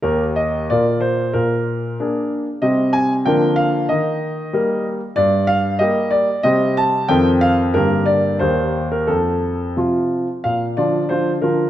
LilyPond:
<<
  \new Staff \with { instrumentName = "Grand piano" } { \time 2/4 \key ees \major \tempo 4 = 93 bes'8 ees''8 d''8 c''8 | bes'4. r8 | ees''8 aes''8 g''8 f''8 | ees''4. r8 |
\key bes \major d''8 f''8 ees''8 d''8 | ees''8 a''8 g''8 f''8 | bes'8 d''8 c''8. bes'16 | a'4 r4 |
f''8 d''8 c''8 bes'8 | }
  \new Staff \with { instrumentName = "Grand piano" } { \clef bass \time 2/4 \key ees \major <ees, bes g'>4 <bes, bes f' bes'>4 | bes,4 <bes d' aes'>4 | <c g c' g'>4 <d f bes bes'>4 | ees4 <g bes bes'>4 |
\key bes \major g,4 <g bes g'>4 | <c g c' g'>4 <f, ees c' a'>4 | <g, d bes g'>4 <ees, ees bes g'>4 | f,4 <c f f'>4 |
bes,8 <d f f'>8 <d f f'>8 <d f f'>8 | }
>>